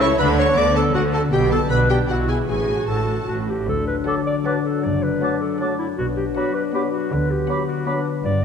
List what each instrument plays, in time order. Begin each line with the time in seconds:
Already playing: double bass section C#2, cello section C#3, harp C#3 G3 G4 A4, viola section E4
0.00 harp A3, clarinet C#5, violin section C#6
0.19 double bass section D2, harp D3, cello section D3, viola section D4, clarinet B4, violin section B5
0.38 harp A3, clarinet C#5, violin section C#6
0.57 double bass section D2, cello section D3, viola section B3, harp D4, clarinet D5, violin section D6
0.76 clarinet A4, violin section A5
0.94 double bass section D2, cello section D3, viola section A3, clarinet F#4, harp D5, violin section F#5
1.13 harp F#4, clarinet A4, violin section A5
1.32 double bass section B1, cello section B2, harp B2, viola section B3, clarinet G4, violin section G5
1.51 harp G3, clarinet A4, violin section A5
1.70 double bass section B1, cello section B2, harp B3, viola section D4, clarinet B4, violin section B5
1.89 harp G4, clarinet G4, violin section G5
2.09 double bass section B1, cello section B2, harp B2, viola section E4, clarinet F#4, violin section F#5
2.28 harp D4 E4, clarinet G#4, violin section G#5
2.48 double bass section A1, harp A2, cello section A2, viola section F#4, clarinet G#4, violin section G#5
2.68 harp A3
2.87 double bass section A1, cello section A2, harp D4, clarinet A4, violin section A5
3.08 harp F#4
3.27 double bass section A1, harp A2, cello section A2, clarinet F#4
3.47 harp E4 A4, clarinet G4
3.66 double bass section D2, cello section D2, harp D3, french horn section F#3 D4, clarinet A4
3.87 harp A3, clarinet B4
4.06 bassoon F#3, viola section F#3, violin section F#4 F#5, harp F#4, clarinet A4, oboe A5, flute section D6
4.26 harp D5, clarinet D5
4.45 bassoon F#3, viola section F#3, violin section F#4 F#5, harp A4, clarinet B4, oboe A5, flute section D6
4.64 harp F#4, clarinet A4
4.83 double bass section F#1, cello section F#2, harp F#2, clarinet D5
5.03 harp F#3, clarinet B4
5.21 bassoon F#3, viola section A3, violin section D4 F#5, harp F#4, oboe A5, flute section D6
5.41 clarinet A4, harp D5
5.59 bassoon F#3, viola section A3, clarinet D4, violin section D4 F#5, harp A4, oboe A5, flute section D6
5.78 clarinet E4, harp F#4
5.98 double bass section B1, cello section B2, harp B2, french horn section F#3 D4, clarinet F#4
6.16 harp F#3, clarinet G4
6.35 bassoon F#3, viola section B3, violin section D4 F#5, clarinet F#4, harp F#4, oboe B5, flute section D6
6.54 clarinet B4, harp D5
6.74 bassoon F#3, viola section B3, violin section D4 F#5, clarinet G4, harp B4, oboe B5, flute section D6
6.92 clarinet F#4, harp F#4
7.12 double bass section D2, cello section D3, harp D3, french horn section B3, clarinet B4
7.30 harp B3, clarinet G4
7.49 bassoon F#3, viola section B3, violin section D4 F#5, harp F#4, oboe B5, flute section D6
7.68 clarinet F#4, harp D5
7.86 bassoon F#3, viola section B3, violin section D4 F#5, clarinet D4, harp B4, oboe B5, flute section D6
8.05 harp F#4
8.24 double bass section G1, harp G2, cello section G2, french horn section F#3 B3, clarinet D5